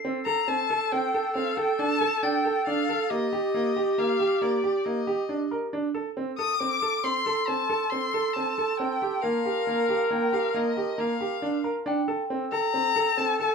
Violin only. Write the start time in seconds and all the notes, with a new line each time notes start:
0.26 A#5
0.48 A5
0.92 G5
1.36 F5
1.57 G5
1.80 A5
2.23 G5
2.67 F5
3.10 D#5
3.98 F5
4.42 D5
4.85 D#5
6.38 D#6
6.60 D6
7.04 C6
7.47 A5
7.90 C6
8.33 A5
8.78 G5
9.21 F5
10.11 G5
10.33 F5
10.56 D#5
11.00 F5
12.52 A#5
13.18 A5
13.41 A5